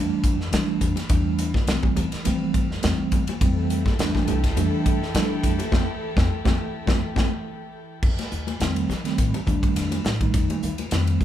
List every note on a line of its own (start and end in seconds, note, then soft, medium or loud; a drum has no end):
0.00 0.36 E3 medium
0.00 0.36 G3 medium
0.00 0.37 A3 medium
0.00 0.37 D4 medium
0.24 0.46 F2 medium
0.24 kick medium
0.24 hi-hat pedal medium
0.24 ride medium
0.41 snare soft
0.52 0.93 E3 medium
0.52 0.65 F3 medium
0.52 0.94 G3 medium
0.52 0.94 A3 medium
0.52 0.94 D4 medium
0.52 snare loud
0.52 hi-hat pedal medium
0.52 ride medium
0.81 0.93 F2 medium
0.81 kick medium
0.81 hi-hat pedal medium
0.81 ride medium
0.81 low conga medium
0.96 snare soft
0.96 ride medium
0.96 high conga medium
1.09 1.55 E2 loud
1.09 1.51 E3 medium
1.09 1.51 G3 medium
1.09 1.51 A3 medium
1.09 1.52 D4 medium
1.09 kick loud
1.09 hi-hat pedal medium
1.09 ride medium
1.38 hi-hat pedal medium
1.38 ride medium
1.54 kick medium
1.54 snare soft
1.54 high conga medium
1.67 1.90 C2 medium
1.67 2.09 E3 medium
1.67 2.09 G3 medium
1.67 2.09 A3 medium
1.67 2.09 C4 medium
1.67 snare medium
1.67 hi-hat pedal medium
1.67 ride medium
1.83 kick medium
1.83 high conga medium
1.96 2.09 E2 medium
1.96 hi-hat pedal medium
1.96 ride medium
1.96 low conga medium
2.12 muted upright bass stroke soft
2.12 snare soft
2.12 ride medium
2.25 2.66 E3 medium
2.25 2.49 F3 loud
2.25 2.67 G3 medium
2.25 2.67 A3 medium
2.25 2.67 C4 loud
2.25 hi-hat pedal medium
2.25 ride medium
2.25 high conga medium
2.54 muted upright bass stroke soft
2.54 kick medium
2.54 hi-hat pedal medium
2.54 ride medium
2.71 2.81 F2 medium
2.71 snare soft
2.82 2.96 F2 medium
2.82 3.24 E3 medium
2.82 3.24 G3 medium
2.82 3.25 A3 medium
2.82 3.25 C4 medium
2.82 snare loud
2.82 hi-hat pedal medium
2.82 ride medium
2.99 muted upright bass stroke soft
3.12 3.24 F2 medium
3.12 kick medium
3.12 hi-hat pedal medium
3.12 ride medium
3.12 low conga medium
3.27 ride medium
3.27 high conga medium
3.40 3.86 F2 medium
3.40 7.98 E3 medium
3.40 3.82 E3 medium
3.40 3.82 G3 medium
3.40 3.83 A3 medium
3.40 3.83 C4 medium
3.40 7.98 E4 medium
3.40 7.99 G4 medium
3.40 7.98 A4 medium
3.40 kick loud
3.40 hi-hat pedal medium
3.40 ride medium
3.70 hi-hat pedal medium
3.70 ride medium
3.86 kick medium
3.86 snare soft
3.86 high conga medium
3.99 4.11 E2 medium
3.99 4.40 E3 medium
3.99 4.40 G3 medium
3.99 4.41 A3 medium
3.99 4.41 D4 medium
3.99 snare loud
3.99 hi-hat pedal medium
3.99 ride medium
4.15 kick medium
4.15 snare soft
4.15 high conga medium
4.28 4.50 C2 medium
4.28 hi-hat pedal medium
4.28 ride medium
4.28 low conga medium
4.44 kick medium
4.44 snare soft
4.44 ride medium
4.56 4.69 F2 medium
4.56 4.98 E3 medium
4.56 4.98 G3 medium
4.56 4.99 A3 medium
4.56 4.99 D4 medium
4.56 hi-hat pedal medium
4.56 ride medium
4.56 high conga medium
4.86 5.08 F2 medium
4.86 kick medium
4.86 hi-hat pedal medium
4.86 ride medium
5.03 snare soft
5.15 5.56 E3 medium
5.15 5.27 F3 medium
5.15 5.56 G3 medium
5.15 5.56 A3 medium
5.15 5.57 D4 medium
5.15 snare loud
5.15 hi-hat pedal medium
5.15 ride medium
5.43 5.56 F2 medium
5.43 kick medium
5.43 hi-hat pedal medium
5.43 ride medium
5.59 ride medium
5.59 high conga medium
5.72 5.84 F2 medium
5.72 5.82 F3 medium
5.72 5.82 A3 medium
5.72 5.82 C4 medium
5.72 kick medium
5.72 snare medium
5.72 high conga medium
6.16 6.26 F2 loud
6.16 6.25 F3 medium
6.16 6.25 A3 medium
6.16 6.25 C4 medium
6.16 kick medium
6.16 snare medium
6.16 high conga medium
6.45 6.55 F2 medium
6.45 6.53 F3 loud
6.45 6.54 A3 loud
6.45 6.53 C4 loud
6.45 kick medium
6.45 snare medium
6.45 high conga loud
6.86 6.99 F2 medium
6.86 6.97 F3 medium
6.86 6.97 A3 medium
6.86 6.97 C4 medium
6.86 kick medium
6.86 snare medium
6.86 high conga medium
7.16 7.28 F2 medium
7.16 7.26 F3 medium
7.16 7.26 A3 medium
7.16 7.26 C4 medium
7.16 kick medium
7.16 snare medium
7.16 high conga medium
8.03 8.15 F2 medium
8.03 kick loud
8.03 crash medium
8.19 snare soft
8.19 ride medium
8.19 high conga medium
8.32 8.54 D#2 medium
8.32 hi-hat pedal medium
8.47 ride medium
8.47 high conga medium
8.60 8.83 F2 medium
8.60 8.91 D#3 medium
8.60 8.91 G3 medium
8.60 8.91 A3 medium
8.60 8.91 C4 medium
8.60 snare medium
8.60 hi-hat pedal medium
8.60 ride medium
8.76 ride medium
8.89 9.12 F3 medium
8.89 snare soft
8.89 hi-hat pedal medium
8.89 low conga medium
9.04 9.35 D#3 medium
9.04 9.35 G3 medium
9.04 9.35 A3 medium
9.04 9.36 C4 medium
9.04 snare soft
9.04 ride medium
9.18 9.31 A2 medium
9.18 kick medium
9.18 hi-hat pedal medium
9.18 ride medium
9.34 ride medium
9.34 low conga medium
9.46 9.60 D#2 medium
9.46 9.98 D#3 medium
9.46 9.98 G3 medium
9.46 9.98 A3 medium
9.46 9.99 D4 medium
9.46 kick medium
9.46 hi-hat pedal medium
9.46 high conga medium
9.63 kick medium
9.63 ride medium
9.76 9.98 F2 medium
9.76 snare soft
9.76 hi-hat pedal medium
9.76 ride medium
9.91 ride medium
9.91 high conga medium
10.05 10.28 A2 medium
10.05 snare loud
10.05 hi-hat pedal medium
10.05 low conga medium
10.21 10.71 D#3 medium
10.21 10.71 G3 medium
10.21 10.71 A3 medium
10.21 10.71 D#4 medium
10.21 kick medium
10.21 ride medium
10.34 10.46 F2 medium
10.34 kick loud
10.34 hi-hat pedal medium
10.34 ride medium
10.50 ride medium
10.50 high conga medium
10.63 10.85 D#2 medium
10.63 hi-hat pedal medium
10.78 ride medium
10.78 high conga medium
10.91 11.14 F2 medium
10.91 11.22 D#3 medium
10.91 11.22 G3 medium
10.91 11.22 A3 medium
10.91 11.23 C4 medium
10.91 snare medium
10.91 hi-hat pedal medium
10.91 ride medium
11.07 ride medium
11.21 11.24 F3 medium
11.21 kick medium
11.21 hi-hat pedal medium